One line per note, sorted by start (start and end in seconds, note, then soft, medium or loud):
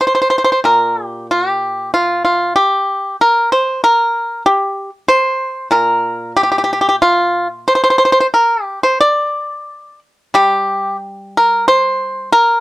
0.01 0.06 C5 medium
0.07 0.14 C5 soft
0.15 0.20 C5 soft
0.22 0.29 C5 soft
0.30 0.37 C5 medium
0.38 0.43 C5 soft
0.44 0.51 C5 medium
0.52 0.59 C5 soft
0.64 2.56 A#2 soft
0.64 1.06 A#4 medium
1.06 1.26 G4 medium
1.31 1.49 F4 medium
1.49 1.90 G4 medium
1.94 2.23 F4 medium
2.25 2.54 F4 soft
2.56 3.15 G4 medium
3.21 3.50 A#4 medium
3.52 3.81 C5 medium
3.84 4.42 A#4 medium
4.46 4.89 G4 medium
5.08 5.67 C5 medium
5.71 7.65 A#2 medium
5.71 6.31 A#4 medium
6.37 6.42 G4 medium
6.43 6.50 G4 soft
6.52 6.57 G4 medium
6.58 6.63 G4 soft
6.64 6.71 G4 medium
6.73 6.79 G4 soft
6.81 6.87 G4 medium
6.89 6.95 G4 medium
7.02 7.47 F4 medium
7.68 7.73 C5 medium
7.75 7.81 C5 medium
7.84 7.89 C5 medium
7.90 7.96 C5 medium
7.98 8.03 C5 medium
8.05 8.11 C5 medium
8.12 8.18 C5 medium
8.20 8.26 C5 medium
8.34 8.64 A#4 medium
8.64 8.78 G4 medium
8.83 8.98 C5 medium
9.01 9.99 D5 medium
10.34 12.32 G3 medium
10.34 10.96 G4 medium
11.37 11.66 A#4 medium
11.68 12.29 C5 medium
12.32 12.60 A#4 medium